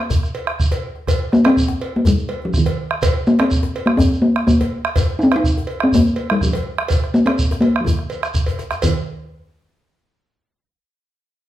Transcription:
Already playing: A#3
0.10 bombo low, djembe bass, shekere
0.23 bombo rim, djembe slap, shekere
0.35 cowbell, djembe slap
0.47 bombo rim, djembe slap
0.60 bombo rim, bombo low, shekere
0.71 cowbell, djembe slap, djembe tone, shekere
0.95 djembe slap
1.07 bombo rim, bombo low, cowbell, djembe slap, djembe bass, shekere
1.32 A#3, bombo rim, djembe slap, shekere
1.45 C4, bombo rim, cowbell, djembe slap
1.56 bombo low, djembe slap, shekere
1.68 djembe slap, djembe tone
1.80 cowbell, djembe slap
1.96 A#3
2.05 G3, bombo low, djembe bass, shekere
2.18 shekere
2.29 cowbell
2.42 F3, djembe slap
2.54 D#3, bombo rim, bombo low, shekere
2.66 cowbell, djembe slap, djembe tone
2.91 bombo rim
3.02 bombo rim, bombo low, cowbell, djembe slap, djembe bass, shekere
3.26 A#3, bombo rim, djembe slap, shekere
3.38 C4, bombo rim, cowbell, djembe slap
3.51 bombo low, djembe slap, shekere
3.63 djembe slap, djembe tone
3.75 cowbell, djembe slap
3.86 A#3, bombo rim
3.97 C4, bombo low, djembe bass, shekere
4.13 shekere
4.22 A#3
4.36 bombo rim, djembe slap
4.47 A#3, bombo rim, bombo low, shekere
4.61 cowbell, djembe slap, djembe tone
4.85 bombo rim
4.96 bombo rim, bombo low, cowbell, djembe slap, djembe bass, shekere
5.19 D#4, bombo rim, djembe slap, shekere
5.23 C4
5.32 bombo rim, cowbell, djembe slap
5.36 D#4
5.44 bombo low, djembe slap, shekere
5.57 djembe tone
5.67 cowbell, djembe slap
5.80 C4, bombo rim
5.92 A#3, bombo low, djembe bass, shekere
6.06 shekere
6.16 cowbell
6.30 G3, bombo rim, djembe slap
6.41 F3, bombo rim, bombo low, shekere
6.53 cowbell, djembe slap, djembe tone
6.78 bombo rim
6.88 bombo low, cowbell, djembe slap, djembe bass, shekere
7.03 bombo rim, djembe slap
7.14 A#3, shekere
7.26 C4, bombo rim, cowbell, djembe slap
7.39 bombo low, djembe slap, shekere
7.51 bombo rim, djembe slap, djembe tone, shekere
7.61 A#3, cowbell
7.76 bombo rim
7.81 D#3 F3
7.86 bombo low, djembe bass, shekere
7.99 bombo rim
8.10 cowbell, shekere
8.23 bombo rim, shekere
8.34 bombo rim, bombo low, djembe bass, shekere
8.46 cowbell, djembe bass, shekere
8.59 bombo rim, djembe slap, shekere
8.71 bombo rim, djembe slap, shekere
8.82 D#3, bombo low, cowbell, djembe bass, shekere

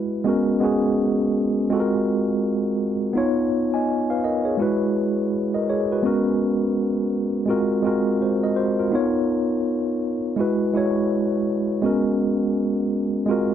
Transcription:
Already playing: G#3 E4 F#4 B4
0.24 G#3 B3 C#4 F#4
0.29 A#4
0.60 G#3 B3 C#4 F#4
0.65 G#4
1.70 G#3 C4 F4 F#4
1.74 A4
1.80 A#4
3.13 B3 D#4 F4
3.18 C#5
3.74 D#5 G#5
4.10 B4 F5
4.24 A#4 D#5
4.45 G#4 C#5
4.57 G#3 E4 F#4
4.62 B4
5.54 A#4 D#5
5.69 G#4 C#5
5.92 F#4 B4
6.03 G#3 B3 C#4 F#4
6.07 A#4
7.46 G#3 C4 F4 F#4
7.50 A#4
7.83 G#3 C4 F4 F#4
7.87 A#4
8.22 F#4 C5
8.43 A#4 D#5
8.56 F#4 C5
8.79 F4 A#4
8.91 B3 D#4 F4
8.95 C#5
10.36 G#3 E4 F#4
10.41 B4
10.73 G#3 E4 F#4 C#5
11.82 G#3 B3 C#4 F#4
11.86 A#4
13.26 G#3 C4 F4 F#4
13.31 A#4

